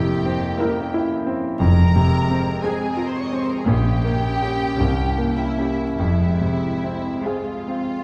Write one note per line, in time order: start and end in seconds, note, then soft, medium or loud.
0.00 0.40 F1 medium
0.00 0.41 F2 medium
0.00 1.57 F2 medium
0.00 0.47 C3 soft
0.00 1.56 A#3 medium
0.00 0.25 C4 medium
0.00 0.58 E4 medium
0.00 0.94 E4 medium
0.00 1.10 G4 medium
0.00 0.60 A#4 medium
0.00 1.07 G5 medium
0.25 0.80 C4 medium
0.60 1.37 A#3 medium
0.60 1.59 C#4 medium
0.60 1.37 E4 medium
0.60 1.13 A#4 medium
0.94 1.47 E4 medium
1.26 1.60 C4 medium
1.60 2.44 F1 medium
1.60 3.62 F2 medium
1.60 3.10 F2 medium
1.60 2.44 F2 medium
1.60 2.61 G#3 medium
1.60 2.63 C4 medium
1.60 2.59 A#4 medium
1.60 2.59 A#5 loud
1.96 2.50 C3 medium
2.31 2.84 C4 medium
2.63 3.42 G#3 medium
2.63 3.65 G#3 medium
2.63 3.42 C4 medium
2.63 3.65 C4 medium
2.63 2.94 G#4 medium
2.63 3.18 G#4 medium
2.63 2.94 G#5 medium
2.94 3.52 F4 medium
2.94 3.07 A#4 medium
2.94 3.08 A#5 medium
3.06 3.16 C5 soft
3.06 3.18 C6 medium
3.17 3.25 C#5 medium
3.17 3.26 C#6 medium
3.24 3.31 D#5 medium
3.24 3.33 D#6 medium
3.31 3.67 C4 medium
3.31 3.39 C#5 soft
3.31 3.40 C#6 medium
3.40 3.48 C5 medium
3.40 3.48 C6 medium
3.48 3.57 A#4 medium
3.48 3.57 A#5 medium
3.58 3.67 G#4 soft
3.58 3.68 G#5 soft
3.66 4.57 A#1 medium
3.66 4.75 A#1 medium
3.66 4.57 A#2 medium
3.66 4.51 A#3 medium
3.66 4.78 A#3 medium
3.66 4.52 C#4 medium
3.66 4.79 C#4 medium
3.66 5.35 G4 medium
3.66 5.37 G5 medium
4.04 4.64 A#3 medium
4.42 4.75 C#4 soft
4.42 4.76 G4 medium
4.79 5.74 C2 medium
4.79 5.93 C2 medium
4.79 5.74 C3 medium
4.79 5.68 A#3 medium
4.79 5.80 A#3 medium
4.79 5.68 C#4 soft
4.79 5.80 C#4 medium
5.18 5.80 A#3 soft
5.37 5.95 E4 medium
5.37 5.96 E5 medium
5.58 5.93 C#4 soft
5.58 5.94 G4 soft
5.96 7.00 F1 medium
5.96 7.01 F2 medium
5.96 8.04 F2 medium
5.96 7.24 G#3 soft
5.96 7.21 C4 soft
5.96 7.21 E4 medium
5.96 7.21 E5 medium
6.41 7.08 C3 soft
6.84 7.51 C4 soft
7.23 8.04 G#3 soft
7.23 8.04 C4 soft
7.23 8.04 F4 soft
7.23 7.92 G#4 soft
7.23 8.04 F5 soft
7.68 8.04 C4 soft